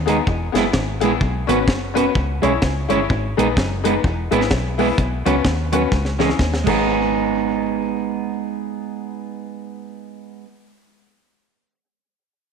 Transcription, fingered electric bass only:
0, 0, Header, 1, 2, 480
1, 0, Start_track
1, 0, Key_signature, 5, "minor"
1, 0, Tempo, 471698
1, 1229, Time_signature, 4, 2, 24, 8
1, 12741, End_track
2, 0, Start_track
2, 0, Title_t, "Fingered electric bass"
2, 0, Program_c, 0, 33
2, 0, Note_on_c, 0, 39, 106
2, 197, Note_off_c, 0, 39, 0
2, 282, Note_on_c, 0, 28, 111
2, 516, Note_off_c, 0, 28, 0
2, 550, Note_on_c, 0, 30, 84
2, 719, Note_off_c, 0, 30, 0
2, 754, Note_on_c, 0, 32, 95
2, 1032, Note_off_c, 0, 32, 0
2, 1032, Note_on_c, 0, 34, 92
2, 1200, Note_off_c, 0, 34, 0
2, 1234, Note_on_c, 0, 35, 101
2, 1472, Note_off_c, 0, 35, 0
2, 1509, Note_on_c, 0, 32, 82
2, 1709, Note_off_c, 0, 32, 0
2, 1709, Note_on_c, 0, 30, 87
2, 2117, Note_off_c, 0, 30, 0
2, 2194, Note_on_c, 0, 37, 95
2, 2431, Note_off_c, 0, 37, 0
2, 2479, Note_on_c, 0, 35, 92
2, 2644, Note_off_c, 0, 35, 0
2, 2675, Note_on_c, 0, 37, 94
2, 2911, Note_off_c, 0, 37, 0
2, 2957, Note_on_c, 0, 31, 85
2, 3123, Note_off_c, 0, 31, 0
2, 3161, Note_on_c, 0, 32, 110
2, 3395, Note_off_c, 0, 32, 0
2, 3439, Note_on_c, 0, 34, 84
2, 3604, Note_off_c, 0, 34, 0
2, 3632, Note_on_c, 0, 30, 106
2, 4038, Note_off_c, 0, 30, 0
2, 4113, Note_on_c, 0, 28, 109
2, 4350, Note_off_c, 0, 28, 0
2, 4398, Note_on_c, 0, 32, 96
2, 4563, Note_off_c, 0, 32, 0
2, 4592, Note_on_c, 0, 35, 95
2, 4998, Note_off_c, 0, 35, 0
2, 5072, Note_on_c, 0, 35, 111
2, 5309, Note_off_c, 0, 35, 0
2, 5356, Note_on_c, 0, 37, 79
2, 5521, Note_off_c, 0, 37, 0
2, 5545, Note_on_c, 0, 39, 100
2, 5954, Note_off_c, 0, 39, 0
2, 6025, Note_on_c, 0, 37, 99
2, 6434, Note_off_c, 0, 37, 0
2, 6507, Note_on_c, 0, 39, 91
2, 6746, Note_off_c, 0, 39, 0
2, 6789, Note_on_c, 0, 32, 90
2, 10620, Note_off_c, 0, 32, 0
2, 12741, End_track
0, 0, End_of_file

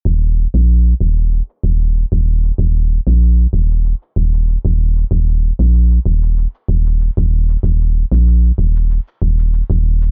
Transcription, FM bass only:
0, 0, Header, 1, 2, 480
1, 0, Start_track
1, 0, Tempo, 631579
1, 43, Time_signature, 4, 2, 24, 8
1, 7685, End_track
2, 0, Start_track
2, 0, Title_t, "FM bass"
2, 0, Program_c, 0, 39
2, 40, Note_on_c, 0, 27, 92
2, 350, Note_off_c, 0, 27, 0
2, 410, Note_on_c, 0, 34, 76
2, 711, Note_off_c, 0, 34, 0
2, 764, Note_on_c, 0, 27, 73
2, 1072, Note_off_c, 0, 27, 0
2, 1242, Note_on_c, 0, 27, 76
2, 1551, Note_off_c, 0, 27, 0
2, 1610, Note_on_c, 0, 27, 96
2, 1911, Note_off_c, 0, 27, 0
2, 1963, Note_on_c, 0, 27, 99
2, 2272, Note_off_c, 0, 27, 0
2, 2331, Note_on_c, 0, 34, 80
2, 2631, Note_off_c, 0, 34, 0
2, 2683, Note_on_c, 0, 27, 76
2, 2991, Note_off_c, 0, 27, 0
2, 3164, Note_on_c, 0, 27, 79
2, 3472, Note_off_c, 0, 27, 0
2, 3531, Note_on_c, 0, 27, 95
2, 3831, Note_off_c, 0, 27, 0
2, 3883, Note_on_c, 0, 27, 96
2, 4191, Note_off_c, 0, 27, 0
2, 4250, Note_on_c, 0, 34, 78
2, 4550, Note_off_c, 0, 34, 0
2, 4602, Note_on_c, 0, 27, 79
2, 4911, Note_off_c, 0, 27, 0
2, 5080, Note_on_c, 0, 27, 82
2, 5390, Note_off_c, 0, 27, 0
2, 5451, Note_on_c, 0, 27, 103
2, 5751, Note_off_c, 0, 27, 0
2, 5800, Note_on_c, 0, 27, 94
2, 6110, Note_off_c, 0, 27, 0
2, 6168, Note_on_c, 0, 34, 80
2, 6469, Note_off_c, 0, 34, 0
2, 6522, Note_on_c, 0, 27, 77
2, 6831, Note_off_c, 0, 27, 0
2, 7005, Note_on_c, 0, 27, 78
2, 7312, Note_off_c, 0, 27, 0
2, 7369, Note_on_c, 0, 27, 98
2, 7670, Note_off_c, 0, 27, 0
2, 7685, End_track
0, 0, End_of_file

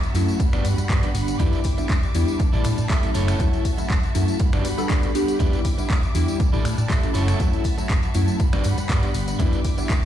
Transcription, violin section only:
0, 0, Header, 1, 2, 480
1, 0, Start_track
1, 0, Tempo, 500000
1, 1342, Time_signature, 4, 2, 24, 8
1, 9649, End_track
2, 0, Start_track
2, 0, Title_t, "Violin section"
2, 0, Program_c, 0, 48
2, 0, Note_on_c, 0, 66, 76
2, 0, Note_on_c, 0, 76, 68
2, 0, Note_on_c, 0, 81, 83
2, 362, Note_off_c, 0, 81, 0
2, 367, Note_off_c, 0, 76, 0
2, 368, Note_off_c, 0, 66, 0
2, 381, Note_on_c, 0, 55, 76
2, 381, Note_on_c, 0, 83, 78
2, 382, Note_on_c, 0, 78, 64
2, 1332, Note_off_c, 0, 78, 0
2, 1332, Note_off_c, 0, 83, 0
2, 1345, Note_on_c, 0, 76, 70
2, 1346, Note_on_c, 0, 86, 83
2, 2294, Note_off_c, 0, 76, 0
2, 2294, Note_off_c, 0, 86, 0
2, 2300, Note_on_c, 0, 74, 66
2, 2300, Note_on_c, 0, 81, 79
2, 2995, Note_off_c, 0, 55, 0
2, 3014, Note_off_c, 0, 74, 0
2, 3014, Note_off_c, 0, 81, 0
2, 3027, Note_on_c, 0, 66, 75
2, 3027, Note_on_c, 0, 76, 68
2, 3027, Note_on_c, 0, 81, 83
2, 4212, Note_off_c, 0, 76, 0
2, 4212, Note_off_c, 0, 81, 0
2, 4213, Note_off_c, 0, 66, 0
2, 4225, Note_on_c, 0, 55, 74
2, 4225, Note_on_c, 0, 78, 66
2, 4225, Note_on_c, 0, 83, 84
2, 5174, Note_off_c, 0, 78, 0
2, 5174, Note_off_c, 0, 83, 0
2, 5176, Note_on_c, 0, 86, 84
2, 5179, Note_on_c, 0, 76, 69
2, 6129, Note_off_c, 0, 86, 0
2, 6131, Note_off_c, 0, 76, 0
2, 6140, Note_on_c, 0, 74, 67
2, 6141, Note_on_c, 0, 81, 87
2, 6837, Note_off_c, 0, 55, 0
2, 6854, Note_off_c, 0, 74, 0
2, 6864, Note_on_c, 0, 66, 74
2, 6864, Note_on_c, 0, 76, 69
2, 8042, Note_off_c, 0, 81, 0
2, 8051, Note_off_c, 0, 66, 0
2, 8051, Note_off_c, 0, 76, 0
2, 8064, Note_on_c, 0, 78, 70
2, 8064, Note_on_c, 0, 83, 82
2, 8065, Note_on_c, 0, 55, 76
2, 9013, Note_off_c, 0, 78, 0
2, 9013, Note_off_c, 0, 83, 0
2, 9018, Note_on_c, 0, 86, 85
2, 9019, Note_on_c, 0, 76, 69
2, 9649, Note_off_c, 0, 55, 0
2, 9649, Note_off_c, 0, 76, 0
2, 9649, Note_off_c, 0, 86, 0
2, 9649, End_track
0, 0, End_of_file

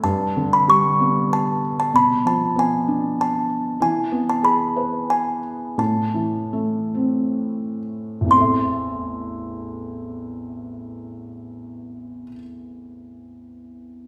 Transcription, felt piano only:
0, 0, Header, 1, 2, 480
1, 0, Start_track
1, 0, Key_signature, 0, "minor"
1, 0, Tempo, 628272
1, 25, Time_signature, 3, 2, 24, 8
1, 3385, Tempo, 677201
1, 4345, Tempo, 750000
1, 4825, Tempo, 834492
1, 5305, Tempo, 937500
1, 5785, Tempo, 969305
1, 8641, End_track
2, 0, Start_track
2, 0, Title_t, "Felt piano"
2, 0, Program_c, 0, 0
2, 0, Control_c, 0, 64, 127
2, 27, Note_on_c, 0, 43, 54
2, 34, Control_c, 0, 64, 0
2, 188, Control_c, 0, 64, 127
2, 281, Note_on_c, 0, 50, 44
2, 517, Note_on_c, 0, 55, 47
2, 763, Note_on_c, 0, 59, 50
2, 1215, Note_off_c, 0, 50, 0
2, 1447, Note_off_c, 0, 43, 0
2, 1449, Note_off_c, 0, 55, 0
2, 1458, Note_off_c, 0, 59, 0
2, 1478, Note_on_c, 0, 47, 55
2, 1489, Control_c, 0, 64, 0
2, 1599, Control_c, 0, 64, 127
2, 1718, Note_on_c, 0, 53, 44
2, 1955, Note_on_c, 0, 59, 45
2, 2199, Note_on_c, 0, 62, 48
2, 2641, Note_off_c, 0, 53, 0
2, 2874, Note_off_c, 0, 47, 0
2, 2877, Note_off_c, 0, 59, 0
2, 2886, Note_off_c, 0, 62, 0
2, 2906, Note_on_c, 0, 52, 55
2, 2915, Control_c, 0, 64, 0
2, 3063, Control_c, 0, 64, 127
2, 3148, Note_on_c, 0, 59, 48
2, 3384, Note_on_c, 0, 68, 50
2, 3620, Note_on_c, 0, 71, 46
2, 4070, Note_off_c, 0, 59, 0
2, 4317, Note_off_c, 0, 52, 0
2, 4317, Note_off_c, 0, 68, 0
2, 4327, Note_off_c, 0, 71, 0
2, 4339, Note_on_c, 0, 45, 50
2, 4354, Control_c, 0, 64, 0
2, 4480, Control_c, 0, 64, 127
2, 4573, Note_on_c, 0, 52, 44
2, 4821, Note_on_c, 0, 57, 47
2, 5061, Note_on_c, 0, 60, 42
2, 5515, Note_off_c, 0, 52, 0
2, 5736, Note_on_c, 0, 33, 44
2, 5755, Note_on_c, 0, 40, 38
2, 5763, Note_off_c, 0, 45, 0
2, 5764, Note_off_c, 0, 57, 0
2, 5766, Note_off_c, 0, 60, 0
2, 5773, Note_on_c, 0, 60, 36
2, 5792, Control_c, 0, 64, 0
2, 5793, Note_on_c, 0, 64, 37
2, 5815, Note_on_c, 0, 69, 37
2, 5833, Note_on_c, 0, 76, 48
2, 5888, Control_c, 0, 64, 127
2, 7728, Note_off_c, 0, 33, 0
2, 7746, Note_off_c, 0, 40, 0
2, 7764, Note_off_c, 0, 60, 0
2, 7783, Note_off_c, 0, 64, 0
2, 7805, Note_off_c, 0, 69, 0
2, 7823, Note_off_c, 0, 76, 0
2, 8641, End_track
0, 0, End_of_file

